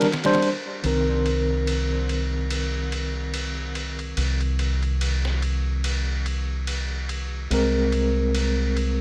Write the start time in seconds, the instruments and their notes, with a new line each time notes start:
0.01 snare, ride
0.12 snare, ride
0.24 tine electric piano G3 D4 C5, snare, ride
0.33 snare, ride
0.42 ride
0.84 fingered electric bass C2, tine electric piano D#3 C4 A#4, ride
1.26 ride
1.67 ride
2.09 ride
2.51 ride
2.92 ride
3.34 ride
3.75 ride
3.99 ride
4.17 fingered electric bass C2, ride
4.41 ride
4.59 ride
4.83 ride
5.01 ride
5.25 snare
5.42 ride
5.84 ride
6.26 ride
6.67 ride
7.09 ride
7.51 fingered electric bass C2, tine electric piano G#3 C4 A#4, ride
7.92 ride
8.35 ride
8.77 ride